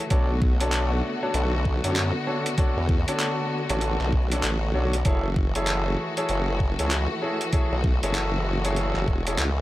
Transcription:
Already playing: A3
0.10 B1 D3 B3 D4 F#4 A4 C#5, kick, closed hi-hat
0.42 kick
0.60 D4 F#4 A4 C#5, closed hi-hat
0.72 clap, closed hi-hat
1.23 D4 F#4 A4 C#5
1.34 B1, closed hi-hat
1.65 kick
1.84 F#2 D4 F#4 A4 C#5, closed hi-hat
1.96 clap, closed hi-hat
2.27 D4 F#4 A4 C#5
2.46 closed hi-hat
2.58 D4 F#4 A4 C#5, kick, closed hi-hat
2.77 E2
2.89 kick
3.08 D4 F#4 A4 C#5, closed hi-hat
3.19 clap, closed hi-hat
3.70 A1 D4 F#4 A4 C#5, closed hi-hat
3.81 closed hi-hat
4.00 B1, clap
4.13 kick
4.32 D4 F#4 A4 C#5, closed hi-hat
4.43 A1, clap, closed hi-hat
4.74 B1 D4 F#4 A4 C#5
4.93 closed hi-hat
5.05 F#1 E3 A3 E4 F#4 G#4 A4 C#5, kick, closed hi-hat
5.36 kick
5.55 E4 G#4 A4 C#5, closed hi-hat
5.67 clap, closed hi-hat
6.17 E4 G#4 A4 C#5, closed hi-hat
6.29 F#1, closed hi-hat
6.60 kick
6.79 C#2 E4 G#4 A4 C#5, closed hi-hat
6.91 clap, closed hi-hat
7.22 E4 G#4 A4 C#5
7.41 closed hi-hat
7.53 E4 G#4 A4 C#5, kick, closed hi-hat
7.72 B1
7.84 kick
8.03 F#1 E4 G#4 A4 C#5, closed hi-hat
8.15 clap, closed hi-hat
8.65 E4 G#4 A4 C#5, closed hi-hat
8.76 closed hi-hat
8.96 F#1, clap
9.08 E1, kick
9.27 E4 G#4 A4 C#5, closed hi-hat
9.38 C#2, clap, closed hi-hat

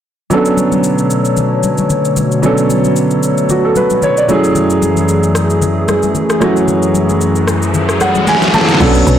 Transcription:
0.30 B2 D3 F#3 A3 B3 C#4 D4 A4 C#5, low conga, shaker
0.45 shaker
0.57 high conga, shaker
0.72 high conga, shaker
0.84 shaker
0.98 shaker
1.11 shaker
1.25 shaker
1.37 low conga, shaker
1.63 high conga, shaker
1.78 high conga, shaker
1.90 low conga, shaker
2.05 shaker
2.17 high conga, low conga, shaker
2.32 shaker
2.42 F#3 B3 C#4 D4 A4, low conga, shaker
2.58 shaker
2.70 high conga, shaker
2.84 high conga, shaker
2.96 shaker
3.11 shaker
3.23 shaker
3.38 shaker
3.49 F#4, low conga, shaker
3.65 A4
3.76 B4, high conga, shaker
3.90 high conga, shaker
4.02 C#5, low conga, shaker
4.17 D5, shaker
4.28 F#2 E3 F#3 A3 C#4 E4 G#4, high conga, low conga, shaker
4.44 shaker
4.55 low conga, shaker
4.70 shaker
4.82 high conga, shaker
4.97 high conga, shaker
5.09 shaker
5.23 shaker
5.35 cross-stick, shaker
5.50 shaker
5.62 low conga, shaker
5.88 cross-stick, high conga, shaker
6.03 high conga, shaker
6.15 low conga, shaker
6.30 cross-stick, shaker
6.40 F#3 A3 C#4 E4 F#4, cross-stick, high conga, low conga, shaker
6.57 shaker
6.68 riser, low conga, shaker
6.83 shaker
6.95 high conga, shaker
7.09 high conga, shaker
7.21 shaker
7.36 shaker
7.47 cross-stick, shaker
7.62 shaker
7.74 low conga, shaker
7.89 cross-stick, shaker
8.01 F#5, cross-stick, high conga, shaker
8.15 high conga, shaker
8.27 G#5, snare, low conga, shaker
8.35 snare
8.42 snare, shaker
8.48 snare
8.54 F#3 A3 C#4 E4 G#4 A5, snare, high conga, low conga, shaker
8.61 snare
8.69 snare, shaker
8.75 snare
8.80 B1 D3 F#3 B3 C#4 D4 A4 B4 C#5 A5, kick, crash, shaker
8.95 shaker
9.07 B1, shaker

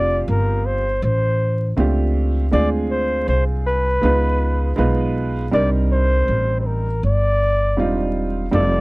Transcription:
Already playing: F1 F3 C4 D4 F4 G4 D5
0.28 G1 A#4
0.66 C5
1.02 A1 C5
1.77 C#2 A3 C4 D4 F4 G4
2.51 D2 G#3 C4 D4 F4 G#4 D5
2.90 C5
3.28 C2 C5
3.66 B4
4.01 C#2 G#3 B3 D#4 F4 B4
4.76 B1 G#3 B3 D#4 F4 B4
5.51 C2 G3 C4 D4 D#4 A#4 D5
5.91 C5
6.28 A1
6.60 C5
6.66 A#4
7.03 G1 D5
7.77 E1 G3 C4 D4 D#4 F4
8.51 F1 G3 C4 D#4 F4 A4 D5

